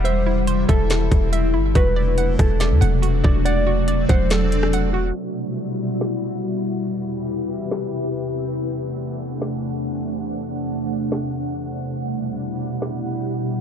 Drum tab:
HH |x---x-x-x-x-x---|x---x-x-x-x-x---|x---x-x-x-x-x---|----------------|
SD |--------o-------|------r-o-------|--------o--r----|--------o-------|
BD |------o---o-----|o-----o-------o-|------o---------|----------------|

HH |----------------|----------------|----------------|----------------|
SD |--------o-------|--------o-------|--------o-------|--------o-------|
BD |----------------|----------------|----------------|----------------|